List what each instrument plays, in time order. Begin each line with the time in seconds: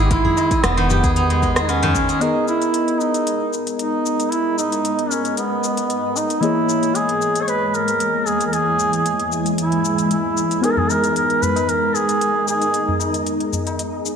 Already playing: fm bass G#1, guzheng D#3 B3 D#4
0.00 guzheng G#4
0.05 duduk G4
0.11 guzheng G#3, duduk E4, kick, closed hi-hat, shaker
0.24 guzheng G#4, tabla ge
0.37 guzheng G#3, tabla na, shaker
0.51 guzheng G#4, kick, closed hi-hat, shaker
0.64 fm bass E1, guzheng B3, duduk B3, cross-stick, closed hi-hat, shaker
0.77 guzheng D#3, closed hi-hat, tabla tin
0.90 guzheng G4, tabla ge, shaker
1.03 fm bass E2, guzheng G#4, kick, closed hi-hat, tabla na, tabla tin, shaker
1.16 guzheng D#4, closed hi-hat, shaker
1.30 guzheng G#3, closed hi-hat, tabla na
1.43 guzheng G#3, kick, tabla tin, shaker
1.56 guzheng G#4, cross-stick, closed hi-hat, shaker
1.62 duduk D#4
1.69 guzheng B3, duduk C#4, closed hi-hat, shaker
1.83 guzheng D#3, closed hi-hat, tabla tin, tabla ge
1.95 guzheng G#3, kick, shaker
2.09 guzheng G#4, closed hi-hat, shaker
2.20 ambient pad G#3 A#4 D#5, synth keys B3 G#4 A#4 D#5, singing bowl B3 D#5, duduk D#4, closed hi-hat, shaker
2.48 duduk E4, shaker
2.62 closed hi-hat, shaker
2.74 closed hi-hat, shaker
2.88 closed hi-hat
3.01 duduk D#4, shaker
3.14 closed hi-hat, shaker
3.27 closed hi-hat, shaker
3.53 shaker
3.67 closed hi-hat, shaker
3.79 duduk D#4, closed hi-hat, shaker
4.06 shaker
4.20 closed hi-hat, shaker
4.32 duduk E4, closed hi-hat, shaker
4.58 duduk D#4, shaker
4.72 closed hi-hat, shaker
4.85 closed hi-hat, shaker
4.99 closed hi-hat
5.11 duduk C#4, shaker
5.25 closed hi-hat, shaker
5.37 duduk B3, closed hi-hat, shaker
5.64 shaker
5.77 closed hi-hat, shaker
5.90 closed hi-hat, shaker
6.16 duduk D#4, shaker
6.30 closed hi-hat, shaker
6.41 synth keys E3 A#3 G#4 C#5 D#5, ambient pad E3 G#5, duduk E4, closed hi-hat, shaker
6.69 shaker
6.83 closed hi-hat, shaker
6.95 duduk G#4, closed hi-hat, shaker
7.09 closed hi-hat
7.22 shaker
7.35 closed hi-hat, shaker
7.42 duduk C#5
7.48 duduk B4, closed hi-hat, shaker
7.68 duduk B4
7.74 duduk A#4, shaker
7.88 closed hi-hat, shaker
8.00 closed hi-hat, shaker
8.27 duduk G#4, shaker
8.41 closed hi-hat, shaker
8.46 duduk A#4
8.53 duduk G#4, closed hi-hat, shaker
8.79 shaker
8.93 closed hi-hat, shaker
9.06 closed hi-hat, shaker
9.20 closed hi-hat
9.32 shaker
9.46 closed hi-hat, shaker
9.58 duduk E4, closed hi-hat, shaker
9.72 closed hi-hat
9.85 shaker
9.98 closed hi-hat, shaker
10.11 duduk E4, closed hi-hat, shaker
10.37 shaker
10.51 closed hi-hat, shaker
10.61 synth keys B3 D#4 G#4 A#4, ambient pad D#4 A#4, duduk G#4, closed hi-hat, shaker
10.71 duduk A#4
10.77 duduk G#4, tabla ge
10.90 duduk A#4, tabla na, shaker
11.04 closed hi-hat, shaker
11.16 duduk A#4, closed hi-hat, shaker
11.30 closed hi-hat, tabla tin
11.42 duduk B4, tabla ge, shaker
11.56 closed hi-hat, tabla na, tabla tin, shaker
11.69 duduk A#4, closed hi-hat, shaker
11.83 tabla tin
11.95 duduk G#4, shaker
12.09 closed hi-hat, shaker
12.21 closed hi-hat, shaker
12.35 tabla tin
12.47 duduk G#4, tabla na, shaker
12.62 closed hi-hat, shaker
12.74 ambient pad G#4, closed hi-hat, shaker
12.88 tabla ge
13.00 tabla na, shaker
13.14 closed hi-hat, shaker
13.27 closed hi-hat, shaker
13.40 closed hi-hat, tabla tin
13.53 tabla ge, shaker
13.67 closed hi-hat, tabla na, tabla tin, shaker
13.79 closed hi-hat, shaker
13.93 tabla na
14.06 tabla tin, shaker